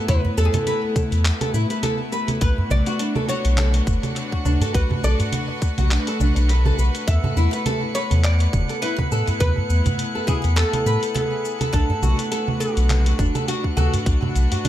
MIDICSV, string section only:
0, 0, Header, 1, 2, 480
1, 0, Start_track
1, 0, Tempo, 582524
1, 70, Time_signature, 4, 2, 24, 8
1, 12100, End_track
2, 0, Start_track
2, 0, Title_t, "String section"
2, 0, Program_c, 0, 48
2, 0, Note_on_c, 0, 57, 92
2, 0, Note_on_c, 0, 59, 78
2, 0, Note_on_c, 0, 64, 84
2, 0, Note_on_c, 0, 71, 76
2, 2075, Note_on_c, 0, 62, 80
2, 2155, Note_on_c, 0, 66, 84
2, 3534, Note_off_c, 0, 59, 0
2, 3536, Note_off_c, 0, 64, 0
2, 6013, Note_on_c, 0, 64, 74
2, 6156, Note_on_c, 0, 59, 74
2, 6681, Note_off_c, 0, 62, 0
2, 7000, Note_off_c, 0, 66, 0
2, 9659, Note_off_c, 0, 57, 0
2, 9669, Note_on_c, 0, 57, 93
2, 9999, Note_on_c, 0, 62, 86
2, 10357, Note_on_c, 0, 66, 78
2, 10359, Note_off_c, 0, 64, 0
2, 10663, Note_off_c, 0, 59, 0
2, 12100, Note_off_c, 0, 57, 0
2, 12100, Note_off_c, 0, 62, 0
2, 12100, Note_off_c, 0, 66, 0
2, 12100, Note_off_c, 0, 71, 0
2, 12100, End_track
0, 0, End_of_file